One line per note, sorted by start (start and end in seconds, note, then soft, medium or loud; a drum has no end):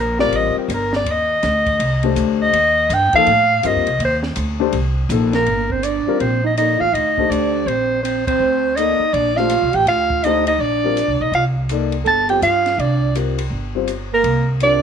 0.00 0.30 A#1 medium
0.00 0.20 A#4 medium
0.19 0.67 G3 medium
0.19 0.67 C4 medium
0.19 0.67 F4 medium
0.19 0.67 A#4 medium
0.19 0.38 D5 loud
0.19 snare soft
0.31 0.53 A1 medium
0.31 ride medium
0.36 0.58 D#5 medium
0.55 0.74 G4 medium
0.55 muted upright bass stroke soft
0.68 1.04 G1 medium
0.68 hi-hat pedal soft
0.68 ride medium
0.74 0.95 A#4 medium
0.93 1.13 D5 medium
0.93 snare soft
1.04 1.41 D#2 medium
1.04 ride medium
1.11 2.19 D#5 medium
1.43 1.79 D2 medium
1.43 snare soft
1.43 hi-hat pedal medium
1.43 ride medium
1.66 kick medium
1.66 ride soft
1.79 2.15 C2 medium
1.79 ride medium
2.03 2.51 A3 medium
2.03 2.51 D4 medium
2.03 2.51 G4 medium
2.03 2.51 C5 medium
2.03 ride soft
2.16 2.52 D2 medium
2.16 hi-hat pedal medium
2.16 ride medium
2.42 2.95 D#5 loud
2.53 2.89 D#2 medium
2.53 ride medium
2.89 3.11 G2 loud
2.89 hi-hat pedal medium
2.89 ride medium
2.94 3.15 G5 loud
3.13 3.26 F3 medium
3.13 3.26 A#3 medium
3.13 3.26 D#4 medium
3.13 3.27 A4 medium
3.13 3.68 F5 loud
3.13 muted upright bass stroke soft
3.13 kick medium
3.13 ride soft
3.27 3.62 A2 medium
3.27 ride medium
3.63 3.77 G2 medium
3.63 3.84 G3 medium
3.63 3.85 C4 medium
3.63 3.85 F4 medium
3.63 3.85 A#4 medium
3.63 4.02 D#5 medium
3.63 hi-hat pedal medium
3.63 ride medium
3.75 3.86 D#2 medium
3.87 3.98 C2 medium
3.87 ride soft
3.99 4.35 D#2 medium
3.99 ride medium
4.05 4.17 C5 medium
4.23 snare soft
4.36 4.72 D2 medium
4.36 hi-hat pedal medium
4.36 ride medium
4.60 4.72 A3 medium
4.60 4.72 D4 medium
4.60 4.73 G4 medium
4.60 4.73 C5 medium
4.73 5.09 C2 medium
4.73 ride medium
5.09 5.45 A#1 loud
5.09 5.31 F3 medium
5.09 5.31 A#3 medium
5.09 5.32 D#4 soft
5.09 5.32 A4 medium
5.09 hi-hat pedal medium
5.09 ride medium
5.33 5.71 A#3 medium
5.33 5.73 A#4 medium
5.33 snare soft
5.33 ride soft
5.46 6.03 G1 medium
5.46 ride soft
5.70 5.86 C4 medium
5.70 5.85 C5 medium
5.70 kick soft
5.83 6.19 D4 medium
5.83 6.21 D5 medium
5.83 hi-hat pedal soft
5.83 ride medium
6.06 6.19 G3 medium
6.06 6.20 C4 medium
6.06 6.20 F4 medium
6.06 6.20 A#4 medium
6.06 muted upright bass stroke soft
6.19 6.77 A#1 medium
6.19 6.42 C4 medium
6.19 6.43 C5 medium
6.19 ride soft
6.44 6.56 D#4 medium
6.44 6.57 D#5 medium
6.57 6.79 A#3 soft
6.57 6.82 D#4 medium
6.57 6.79 D#4 soft
6.57 6.79 A4 soft
6.57 6.80 D5 soft
6.57 6.82 D#5 medium
6.57 hi-hat pedal soft
6.57 ride medium
6.80 6.93 A1 medium
6.80 6.95 F4 medium
6.80 6.95 F5 medium
6.93 7.28 D2 medium
6.93 7.32 D#4 medium
6.93 7.33 D#5 medium
6.93 ride medium
7.17 7.65 A3 medium
7.17 7.65 D4 medium
7.17 7.66 G4 medium
7.17 7.66 C5 medium
7.17 kick soft
7.30 7.64 D2 medium
7.30 7.69 D4 medium
7.30 7.69 D5 medium
7.30 hi-hat pedal soft
7.30 ride medium
7.66 8.36 A#1 medium
7.66 8.03 C4 medium
7.66 8.03 C5 medium
7.66 ride soft
8.03 8.26 C4 medium
8.03 8.25 C5 medium
8.03 hi-hat pedal soft
8.03 ride medium
8.27 8.80 C4 medium
8.27 8.78 C5 medium
8.27 kick medium
8.27 ride medium
8.39 8.96 D2 medium
8.76 8.98 A#3 medium
8.76 8.99 D#4 soft
8.76 9.15 D#4 medium
8.76 8.99 A4 medium
8.76 8.99 D5 medium
8.76 9.15 D#5 medium
8.76 hi-hat pedal medium
8.76 ride medium
8.99 muted upright bass stroke soft
9.13 9.59 A#1 medium
9.13 9.38 D4 medium
9.13 9.39 D5 medium
9.13 ride soft
9.37 9.50 A3 medium
9.37 9.50 D4 medium
9.37 9.75 F4 medium
9.37 9.50 G4 medium
9.37 9.50 C5 medium
9.37 9.76 F5 medium
9.37 snare soft
9.50 hi-hat pedal soft
9.50 ride medium
9.62 9.73 C2 medium
9.73 9.85 A1 medium
9.73 9.87 G4 medium
9.73 9.88 G5 medium
9.73 ride soft
9.86 10.56 D2 medium
9.86 10.26 F4 medium
9.86 10.25 F5 loud
9.86 ride medium
10.10 kick soft
10.24 10.45 A3 medium
10.24 10.45 D4 medium
10.24 10.47 D#4 medium
10.24 10.46 G4 soft
10.24 10.46 C5 medium
10.24 10.47 D#5 medium
10.24 hi-hat pedal soft
10.24 ride medium
10.47 10.63 D#4 medium
10.47 10.62 D#5 medium
10.47 ride medium
10.58 11.05 A#1 medium
10.58 11.23 D4 medium
10.58 11.24 D5 medium
10.84 10.96 G3 medium
10.84 10.96 C4 medium
10.84 10.96 F4 soft
10.84 10.97 A#4 medium
10.97 hi-hat pedal soft
10.97 ride medium
11.08 11.20 C2 medium
11.20 11.31 B1 medium
11.20 11.34 D#4 medium
11.20 11.34 D#5 medium
11.32 12.02 C2 medium
11.32 11.45 F4 medium
11.32 11.45 F5 medium
11.32 ride soft
11.69 11.91 A#3 medium
11.69 11.91 D#4 medium
11.69 11.91 A4 medium
11.69 11.92 D5 medium
11.69 hi-hat pedal soft
11.69 ride medium
11.92 ride soft
12.05 12.40 G1 medium
12.05 12.27 A4 medium
12.05 12.28 A5 loud
12.05 ride soft
12.29 12.41 G3 soft
12.29 12.42 C4 soft
12.29 12.42 F4 soft
12.29 12.42 G4 medium
12.29 12.42 C5 medium
12.29 12.42 G5 medium
12.29 ride soft
12.42 12.76 G2 medium
12.42 12.80 F4 medium
12.42 12.81 F5 medium
12.42 hi-hat pedal medium
12.42 ride medium
12.66 snare soft
12.66 ride soft
12.78 13.48 C2 medium
12.78 13.16 D4 medium
12.78 13.16 D5 medium
12.78 ride soft
13.15 13.36 G3 soft
13.15 13.36 C4 soft
13.15 13.37 F4 soft
13.15 13.37 A#4 soft
13.15 hi-hat pedal soft
13.15 ride medium
13.38 ride medium
13.50 14.21 G1 medium
13.75 13.87 G3 medium
13.75 13.87 C4 medium
13.75 13.88 F4 soft
13.75 13.88 C5 medium
13.88 hi-hat pedal soft
13.88 ride medium
14.13 14.46 A#3 medium
14.13 14.47 A#4 medium
14.23 14.82 C2 medium
14.23 ride medium
14.60 14.82 G3 soft
14.60 14.82 C4 soft
14.60 14.82 D4 medium
14.60 14.82 F4 soft
14.60 14.82 A#4 medium
14.60 14.82 D5 loud
14.60 hi-hat pedal soft
14.60 ride medium